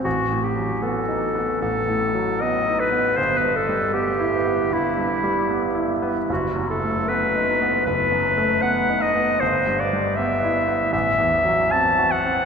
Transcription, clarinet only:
\new Staff \with { instrumentName = "Clarinet" } { \time 4/4 \key e \minor \tempo 4 = 77 fis'8 g'8 a'4 a'4 dis''8 b'8 | c''16 b'16 a'8 g'4 e'4. r8 | fis'8 a'8 b'4 b'4 fis''8 dis''8 | c''8 d''8 e''4 e''4 a''8 fis''8 | }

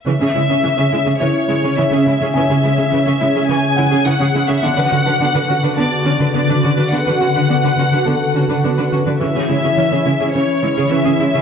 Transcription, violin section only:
\new Staff \with { instrumentName = "Violin section" } { \time 4/4 \key cis \phrygian \tempo 4 = 105 e''2 cis''4 e''4 | e''2 gis''4 fis''8. e''16 | fis''2 d''4 d''4 | fis''2.~ fis''8 r8 |
e''2 cis''4 e''4 | }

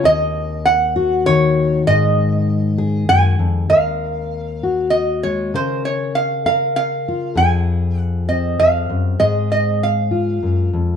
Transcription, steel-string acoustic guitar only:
\new Staff \with { instrumentName = "Steel-string acoustic guitar" } { \clef bass \time 3/4 \key ees \dorian \tempo 4 = 98 << { r4. ges'4. | r4. aes'4. | bes'4. ges'4 aes8 | bes'4. bes'4 f'8 |
aes'4. c'4. | aes'4. f'4. | } \\ { ees,2 ees4 | aes,2 ges,8 f,8 | ees,2. | des2. |
f,2 f,8 ges,8 | aes,2 ges,8 f,8 | } >> }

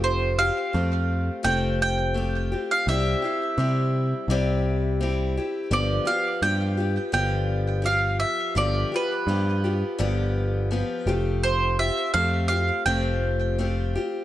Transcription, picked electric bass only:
\new Staff \with { instrumentName = "Picked electric bass" } { \clef bass \time 4/4 \key g \mixolydian \tempo 4 = 84 f,,4 f,4 f,,2 | c,8 r8 c4 c,2 | g,,8 r8 g,4 g,,2 | g,,8 r8 g,4 g,,4. f,,8~ |
f,,4 f,4 f,,2 | }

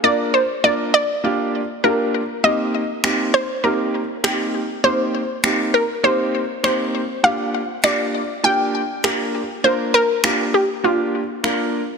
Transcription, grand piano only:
\new Staff \with { instrumentName = "Grand piano" } { \time 4/4 \key c \minor \tempo 4 = 100 <bes d' f' bes'>8 r8 <bes d' f' bes'>8 r8 <bes d' f' g'>8 r8 <bes d' f' g'>8 r8 | <bes c' ees' g'>8 r8 <bes c' ees' g'>8 r8 <bes c' ees' g'>8 r8 <bes c' ees' g'>8 r8 | <bes c' ees' g'>8 r8 <bes c' ees' g'>8 r8 <bes c' ees' g'>8 r8 <bes c' ees' g'>8 r8 | <bes d' f' g'>8 r8 <bes d' f' g'>8 r8 <bes d' f' g'>8 r8 <bes d' f' bes'>8 r8 |
<bes d' f' bes'>8 r8 <bes d' f' g'>8 r8 <bes d' f' g'>8 r8 <bes d' f' bes'>8 r8 | }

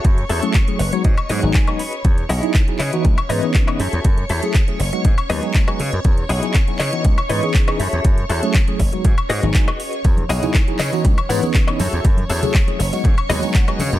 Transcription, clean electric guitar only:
\new Staff \with { instrumentName = "Clean electric guitar" } { \time 4/4 \key fis \dorian \tempo 4 = 120 << { r4. b'16 cis''16 dis''8. fis''16 gis''8 b''8 | r1 | r1 | r1 |
r1 | r1 | r2 r8 dis''8 fis''4 | } \\ { <fis' gis' a' e''>16 r16 <fis' gis' a' e''>8 r4. <fis' gis' b' dis''>8 r16 <fis' gis' b' dis''>8. | r8 <e' fis' gis' dis''>8 r8 <e' b' cis'' dis''>8. r16 <e' b' cis'' dis''>8 r16 <e' b' cis'' dis''>16 <fis' gis' a' e''>8~ | <fis' gis' a' e''>16 r16 <fis' gis' a' e''>8 r4. <fis' gis' b' dis''>8 r16 <fis' gis' b' dis''>8. | r8 <e' fis' gis' dis''>8 r8 <e' b' cis'' dis''>8. r16 <e' b' cis'' dis''>8 r16 <e' b' cis'' dis''>16 <fis' gis' a' e''>8~ |
<fis' gis' a' e''>16 r16 <fis' gis' a' e''>8 r4. <fis' gis' b' dis''>8 r16 <fis' gis' b' dis''>8. | r8 <e' fis' gis' dis''>8 r8 <e' b' cis'' dis''>8. r16 <e' b' cis'' fis''>8 r16 <e' b' cis'' dis''>16 <fis' gis' a' e''>8~ | <fis' gis' a' e''>16 r16 <fis' gis' a' e''>8 r4. <fis' gis' b' dis''>8 r16 <fis' gis' b' dis''>8. | } >> }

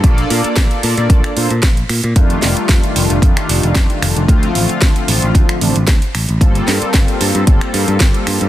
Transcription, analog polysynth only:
\new Staff \with { instrumentName = "Analog polysynth" } { \time 4/4 \key g \minor \tempo 4 = 113 <bes d' f' a' d''>2~ <bes d' f' a' d''>8 <bes d' f' a' c''>8 r4 | <ees g a d' f'>2 <ees g a d' f'>2 | <d f a c' f'>2~ <d f a c' f'>8 <d f a c' d'>8 r4 | <g bes c' f' a'>2 <g bes c' f' a'>2 | }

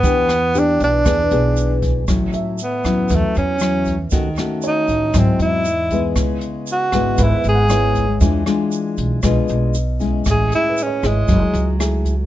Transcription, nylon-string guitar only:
\new Staff \with { instrumentName = "Nylon-string guitar" } { \time 4/4 \key e \dorian \tempo 4 = 117 << { <b d' g'>8 r8 <b d' g'>8 r8 <b d' gis'>8 <b d' gis'>4. | \key a \major <fis cis' e'>4 r8 <fis cis' e'>4. <fis cis' e'>8 r8 | <a cis' fis'>8 <a cis' fis'>4. <fis bis e'>4 r8 <gis b e'>8~ | <gis b e'>4. <gis b e'>4. <gis b e'>8 r8 |
<gis d' f'>8 <gis d' f'>4. <gis d' f'>4 r8 <gis cis' e'>8~ | <gis cis' e'>4. <e' gis'>4. <a e' gis'>8 r8 | } \\ { e2 e2 | a,2 e2 | dis2 gis,2 | cis2 gis,2 |
e2 b,2 | a,2 fis2 | } >> }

